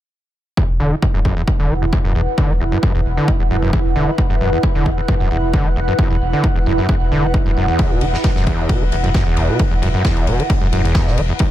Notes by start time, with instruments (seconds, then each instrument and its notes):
0.57 acid bass E2, analog synth pad E4, kick
0.69 sub bass E1
0.80 sub bass E1, acid bass D3
0.92 acid bass E3
1.02 acid bass E2, kick
1.14 sub bass E1, acid bass F#2
1.18 analog synth pad B4 F#5
1.25 sub bass E1, acid bass F#2, kick
1.37 acid bass E2
1.48 kick
1.59 sub bass E1, acid bass D3
1.70 sub bass E1, acid bass E3
1.82 sub bass E1, acid bass E2
1.93 acid bass F#2, kick
2.05 sub bass E1, acid bass F#2
2.15 sub bass E1, acid bass E2
2.38 acid bass D3, kick
2.50 sub bass E1, acid bass E3
2.60 sub bass E1, acid bass E2
2.72 acid bass F#2
2.83 acid bass F#2, kick
2.95 sub bass E1, acid bass E2
3.05 sub bass E1
3.17 acid bass D3
3.28 acid bass E3, kick
3.40 sub bass E1, acid bass E2
3.51 sub bass E1, acid bass F#2
3.62 sub bass E1, acid bass F#2
3.73 acid bass E2, kick
3.85 sub bass E1
3.96 sub bass E1, acid bass D3
4.08 acid bass E3
4.18 acid bass E2, kick
4.30 sub bass E1, acid bass F#2
4.41 sub bass E1, acid bass F#2
4.53 acid bass E2
4.63 kick
4.75 sub bass E1, acid bass D3
4.86 sub bass E1, acid bass E3, kick
4.98 acid bass E2
5.08 acid bass F#2, kick
5.20 sub bass E1, acid bass F#2
5.31 sub bass E1, acid bass E2
5.43 sub bass E1
5.54 acid bass D3, kick
5.65 sub bass E1, acid bass E3
5.76 sub bass E1, acid bass E2
5.88 acid bass F#2
5.99 acid bass F#2, kick
6.11 sub bass E1, acid bass E2
6.21 sub bass E1
6.33 acid bass D3
6.44 acid bass E3, kick
6.56 sub bass E1, acid bass E2
6.66 sub bass E1, acid bass F#2
6.78 acid bass F#2
6.89 acid bass E2, kick
7.01 sub bass E1
7.11 sub bass E1, acid bass D3
7.23 sub bass E1, acid bass E3
7.34 acid bass E2, kick
7.46 sub bass E1, acid bass F#2
7.57 sub bass E1, acid bass F#2
7.68 acid bass E2
7.79 kick, ride
7.91 sub bass E1, acid bass B2
8.01 sub bass E1, acid bass E3, ride
8.13 acid bass E2, snare
8.24 acid bass F#2, kick, snare, ride
8.36 sub bass E1, acid bass F#2, snare
8.47 sub bass E1, acid bass E2, kick, ride
8.69 acid bass B2, kick, ride
8.81 sub bass E1, acid bass E3
8.92 sub bass E1, acid bass E2, ride
9.04 sub bass E1, acid bass F#2, ride
9.14 acid bass F#2, kick, snare, ride
9.26 sub bass E1, acid bass E2
9.37 sub bass E1, ride
9.49 acid bass B2
9.59 acid bass E3, kick, ride
9.71 sub bass E1, acid bass E2
9.82 sub bass E1, acid bass F#2, ride
9.94 acid bass F#2
10.05 acid bass E2, kick, snare, ride
10.17 sub bass E1, ride
10.27 sub bass E1, acid bass B2, ride
10.39 acid bass E3, ride
10.50 acid bass E2, kick, ride
10.62 sub bass E1, acid bass F#2
10.72 sub bass E1, acid bass F#2, ride
10.84 sub bass E1, acid bass E2, ride
10.95 kick, snare, ride
11.07 sub bass E1, acid bass B2, snare
11.17 sub bass E1, acid bass E3, ride
11.29 acid bass E2
11.39 acid bass F#2, kick, ride